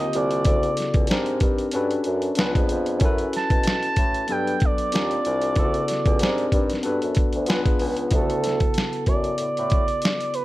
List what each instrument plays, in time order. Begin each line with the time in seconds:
Already playing: tine electric piano D3 A#3 C4 F4 G4, analog synth lead D#5
0.13 bassoon C2, analog synth lead D5, closed hi-hat
0.31 closed hi-hat
0.44 bassoon D2, tine electric piano C#3 B3 E4 F#4 A4, kick, closed hi-hat
0.63 closed hi-hat
0.77 snare, closed hi-hat
0.94 bassoon C#2, kick, closed hi-hat
1.07 bassoon G#2, tine electric piano C4 D4 D#4, snare, closed hi-hat
1.11 tine electric piano G4 A#4
1.26 closed hi-hat
1.40 bassoon G2, kick, closed hi-hat
1.58 closed hi-hat
1.72 bassoon G2, tine electric piano C#4 D4 F#4 A4, closed hi-hat
1.76 tine electric piano B4
1.91 closed hi-hat
2.04 bassoon F#2, closed hi-hat
2.22 closed hi-hat
2.35 bassoon C#2, tine electric piano B3 D4 F4, snare, closed hi-hat
2.39 tine electric piano G#4 B4
2.55 bassoon F2, kick, closed hi-hat
2.69 bassoon F2, closed hi-hat
2.86 closed hi-hat
2.99 bassoon F#2, tine electric piano C#4 E4 F#4, kick, closed hi-hat
3.04 tine electric piano A4 B4
3.18 closed hi-hat
3.33 analog synth lead A5, snare, closed hi-hat
3.50 bassoon B2, kick, closed hi-hat
3.63 snare, closed hi-hat
3.83 closed hi-hat
3.96 bassoon A2, kick, closed hi-hat
4.14 closed hi-hat
4.28 bassoon G2, tine electric piano F#3 B3 D4 A4 B4, analog synth lead G5, closed hi-hat
4.47 closed hi-hat
4.60 kick, closed hi-hat
4.65 analog synth lead D5
4.78 closed hi-hat
4.91 bassoon D#2, tine electric piano C4 D4 F4 G4 A#4, closed hi-hat
4.96 snare
5.11 closed hi-hat
5.25 bassoon C2, closed hi-hat
5.42 closed hi-hat
5.55 bassoon D2, tine electric piano C#3 B3 E4 F4 A4, kick, closed hi-hat
5.64 tine electric piano F#4
5.74 closed hi-hat
5.88 snare, closed hi-hat
6.05 bassoon C#2, kick, closed hi-hat
6.19 bassoon G#2, tine electric piano B3 D4 D#4 G4, snare, closed hi-hat
6.23 tine electric piano C4 A#4
6.38 closed hi-hat
6.52 bassoon G2, kick, closed hi-hat
6.70 snare, closed hi-hat
6.83 bassoon G2, tine electric piano B3 D4 F#4 A4 B4, closed hi-hat
7.02 bassoon F#2, closed hi-hat
7.15 kick, closed hi-hat
7.33 bassoon D2, closed hi-hat
7.46 bassoon C#2, tine electric piano B3 D4 F4 G#4 B4, snare, closed hi-hat
7.66 kick, closed hi-hat
7.79 bassoon C#2, open hi-hat
7.97 closed hi-hat
8.09 bassoon D2, tine electric piano C#3 B3 E4, kick, closed hi-hat
8.13 tine electric piano F#4 G4, analog synth lead A4
8.21 tine electric piano A4
8.30 closed hi-hat
8.44 snare, closed hi-hat
8.60 kick, closed hi-hat
8.74 snare, closed hi-hat
8.93 closed hi-hat
9.06 bassoon F#2, analog synth lead D5, kick, closed hi-hat
9.24 closed hi-hat
9.38 bassoon A2, closed hi-hat
9.57 bassoon A2, closed hi-hat
9.70 kick, closed hi-hat
9.88 closed hi-hat
10.02 snare, closed hi-hat
10.21 closed hi-hat
10.34 analog synth lead B4, closed hi-hat